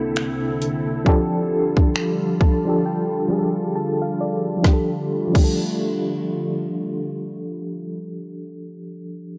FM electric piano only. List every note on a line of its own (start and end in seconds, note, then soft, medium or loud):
0.00 1.07 C3 medium
0.00 1.08 A#3 medium
0.00 1.06 D4 medium
0.00 1.08 E4 medium
0.00 1.07 A4 medium
1.05 2.25 F3 loud
1.05 2.26 D4 medium
1.05 2.27 G4 loud
1.09 2.27 A4 loud
2.41 2.82 A5 medium
2.65 3.15 F3 medium
2.65 3.16 D4 medium
2.65 3.16 G4 medium
2.65 3.17 A4 medium
2.86 3.71 G5 medium
3.29 4.31 F3 medium
3.29 4.32 D4 medium
3.29 4.33 G4 medium
3.29 3.39 G#4 medium
3.39 4.36 A4 medium
3.76 3.99 A5 medium
4.02 4.19 F5 medium
4.21 4.62 D5 medium
4.57 4.88 F3 medium
4.62 4.91 D4 medium
4.68 4.94 G4 medium
4.73 4.97 A4 medium
5.28 8.66 F3 medium
5.33 8.72 D4 medium
5.39 8.77 G4 medium
5.44 8.83 A4 medium